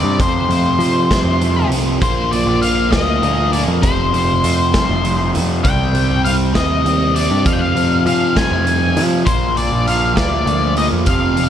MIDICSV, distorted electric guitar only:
0, 0, Header, 1, 2, 480
1, 0, Start_track
1, 0, Tempo, 604230
1, 160, Time_signature, 6, 3, 24, 8
1, 9128, End_track
2, 0, Start_track
2, 0, Title_t, "Distorted electric guitar"
2, 0, Program_c, 0, 30
2, 0, Note_on_c, 0, 48, 60
2, 0, Note_on_c, 0, 55, 46
2, 0, Note_on_c, 0, 60, 60
2, 141, Note_off_c, 0, 48, 0
2, 154, Note_off_c, 0, 55, 0
2, 158, Note_on_c, 0, 41, 77
2, 170, Note_on_c, 0, 48, 77
2, 180, Note_on_c, 0, 53, 83
2, 393, Note_off_c, 0, 53, 0
2, 396, Note_on_c, 0, 53, 54
2, 411, Note_off_c, 0, 48, 0
2, 421, Note_on_c, 0, 48, 50
2, 640, Note_off_c, 0, 41, 0
2, 877, Note_off_c, 0, 53, 0
2, 880, Note_on_c, 0, 53, 66
2, 884, Note_off_c, 0, 48, 0
2, 893, Note_on_c, 0, 48, 70
2, 899, Note_on_c, 0, 41, 60
2, 1106, Note_off_c, 0, 41, 0
2, 1115, Note_on_c, 0, 41, 59
2, 1122, Note_off_c, 0, 48, 0
2, 1131, Note_on_c, 0, 48, 57
2, 1135, Note_off_c, 0, 53, 0
2, 1138, Note_on_c, 0, 53, 68
2, 1360, Note_off_c, 0, 53, 0
2, 1364, Note_on_c, 0, 53, 59
2, 1377, Note_off_c, 0, 48, 0
2, 1387, Note_on_c, 0, 48, 48
2, 1586, Note_off_c, 0, 41, 0
2, 1598, Note_off_c, 0, 48, 0
2, 1601, Note_on_c, 0, 46, 77
2, 1611, Note_off_c, 0, 53, 0
2, 1614, Note_on_c, 0, 53, 86
2, 1621, Note_off_c, 0, 60, 0
2, 1624, Note_on_c, 0, 58, 80
2, 1837, Note_off_c, 0, 58, 0
2, 1846, Note_on_c, 0, 58, 55
2, 1864, Note_off_c, 0, 53, 0
2, 1867, Note_on_c, 0, 53, 51
2, 2084, Note_off_c, 0, 46, 0
2, 2311, Note_off_c, 0, 58, 0
2, 2320, Note_on_c, 0, 58, 74
2, 2324, Note_off_c, 0, 53, 0
2, 2334, Note_on_c, 0, 53, 64
2, 2342, Note_on_c, 0, 46, 57
2, 2554, Note_off_c, 0, 46, 0
2, 2564, Note_off_c, 0, 53, 0
2, 2564, Note_on_c, 0, 46, 66
2, 2573, Note_off_c, 0, 58, 0
2, 2574, Note_on_c, 0, 53, 62
2, 2582, Note_on_c, 0, 58, 71
2, 2785, Note_off_c, 0, 58, 0
2, 2794, Note_on_c, 0, 58, 59
2, 2808, Note_off_c, 0, 53, 0
2, 2817, Note_on_c, 0, 53, 54
2, 3026, Note_off_c, 0, 58, 0
2, 3031, Note_off_c, 0, 46, 0
2, 3035, Note_on_c, 0, 41, 66
2, 3037, Note_off_c, 0, 53, 0
2, 3046, Note_on_c, 0, 48, 85
2, 3057, Note_on_c, 0, 53, 87
2, 3265, Note_off_c, 0, 53, 0
2, 3275, Note_on_c, 0, 53, 68
2, 3283, Note_off_c, 0, 48, 0
2, 3293, Note_on_c, 0, 48, 51
2, 3521, Note_off_c, 0, 41, 0
2, 3744, Note_off_c, 0, 53, 0
2, 3754, Note_off_c, 0, 48, 0
2, 3754, Note_on_c, 0, 53, 74
2, 3763, Note_on_c, 0, 48, 60
2, 3773, Note_on_c, 0, 41, 53
2, 3979, Note_off_c, 0, 41, 0
2, 3989, Note_on_c, 0, 41, 66
2, 3992, Note_off_c, 0, 48, 0
2, 4002, Note_off_c, 0, 53, 0
2, 4002, Note_on_c, 0, 48, 66
2, 4011, Note_on_c, 0, 53, 71
2, 4227, Note_off_c, 0, 53, 0
2, 4237, Note_on_c, 0, 53, 56
2, 4250, Note_off_c, 0, 48, 0
2, 4260, Note_on_c, 0, 48, 51
2, 4463, Note_off_c, 0, 41, 0
2, 4464, Note_off_c, 0, 48, 0
2, 4467, Note_off_c, 0, 53, 0
2, 4474, Note_on_c, 0, 48, 73
2, 4485, Note_on_c, 0, 55, 85
2, 4497, Note_on_c, 0, 60, 86
2, 4708, Note_off_c, 0, 60, 0
2, 4712, Note_on_c, 0, 60, 57
2, 4720, Note_off_c, 0, 55, 0
2, 4729, Note_on_c, 0, 55, 47
2, 4960, Note_off_c, 0, 48, 0
2, 5187, Note_off_c, 0, 60, 0
2, 5190, Note_off_c, 0, 55, 0
2, 5190, Note_on_c, 0, 60, 63
2, 5200, Note_on_c, 0, 55, 67
2, 5212, Note_on_c, 0, 48, 56
2, 5422, Note_off_c, 0, 48, 0
2, 5432, Note_on_c, 0, 48, 54
2, 5434, Note_off_c, 0, 55, 0
2, 5444, Note_on_c, 0, 55, 65
2, 5446, Note_off_c, 0, 60, 0
2, 5450, Note_on_c, 0, 60, 70
2, 5675, Note_off_c, 0, 60, 0
2, 5678, Note_on_c, 0, 60, 59
2, 5689, Note_off_c, 0, 55, 0
2, 5699, Note_on_c, 0, 55, 50
2, 5904, Note_off_c, 0, 48, 0
2, 5917, Note_off_c, 0, 55, 0
2, 5917, Note_on_c, 0, 41, 81
2, 5931, Note_on_c, 0, 48, 72
2, 5941, Note_on_c, 0, 53, 92
2, 6152, Note_off_c, 0, 53, 0
2, 6156, Note_on_c, 0, 53, 59
2, 6166, Note_off_c, 0, 48, 0
2, 6176, Note_on_c, 0, 48, 48
2, 6400, Note_off_c, 0, 41, 0
2, 6634, Note_off_c, 0, 53, 0
2, 6637, Note_on_c, 0, 53, 71
2, 6640, Note_off_c, 0, 48, 0
2, 6650, Note_on_c, 0, 48, 69
2, 6657, Note_on_c, 0, 41, 57
2, 6865, Note_off_c, 0, 41, 0
2, 6874, Note_on_c, 0, 41, 65
2, 6876, Note_off_c, 0, 48, 0
2, 6886, Note_on_c, 0, 48, 63
2, 6889, Note_off_c, 0, 53, 0
2, 6892, Note_on_c, 0, 53, 72
2, 7105, Note_off_c, 0, 53, 0
2, 7108, Note_on_c, 0, 53, 65
2, 7118, Note_off_c, 0, 48, 0
2, 7128, Note_on_c, 0, 48, 56
2, 7343, Note_off_c, 0, 41, 0
2, 7344, Note_off_c, 0, 48, 0
2, 7347, Note_on_c, 0, 46, 79
2, 7355, Note_off_c, 0, 53, 0
2, 7359, Note_on_c, 0, 53, 84
2, 7365, Note_off_c, 0, 60, 0
2, 7368, Note_on_c, 0, 58, 77
2, 7579, Note_off_c, 0, 58, 0
2, 7589, Note_on_c, 0, 58, 58
2, 7607, Note_off_c, 0, 53, 0
2, 7610, Note_on_c, 0, 53, 53
2, 7833, Note_off_c, 0, 46, 0
2, 8056, Note_off_c, 0, 58, 0
2, 8066, Note_on_c, 0, 58, 66
2, 8074, Note_off_c, 0, 53, 0
2, 8077, Note_on_c, 0, 53, 61
2, 8088, Note_on_c, 0, 46, 59
2, 8299, Note_off_c, 0, 46, 0
2, 8308, Note_on_c, 0, 46, 58
2, 8311, Note_off_c, 0, 53, 0
2, 8315, Note_on_c, 0, 53, 65
2, 8319, Note_off_c, 0, 58, 0
2, 8329, Note_on_c, 0, 58, 64
2, 8542, Note_off_c, 0, 58, 0
2, 8551, Note_on_c, 0, 58, 64
2, 8566, Note_off_c, 0, 53, 0
2, 8569, Note_on_c, 0, 53, 51
2, 8778, Note_off_c, 0, 46, 0
2, 8779, Note_off_c, 0, 58, 0
2, 8779, Note_on_c, 0, 41, 80
2, 8790, Note_on_c, 0, 48, 86
2, 8799, Note_off_c, 0, 53, 0
2, 8803, Note_on_c, 0, 53, 83
2, 9010, Note_off_c, 0, 53, 0
2, 9019, Note_on_c, 0, 53, 63
2, 9031, Note_off_c, 0, 48, 0
2, 9040, Note_on_c, 0, 48, 54
2, 9128, Note_off_c, 0, 41, 0
2, 9128, Note_off_c, 0, 48, 0
2, 9128, Note_off_c, 0, 53, 0
2, 9128, End_track
0, 0, End_of_file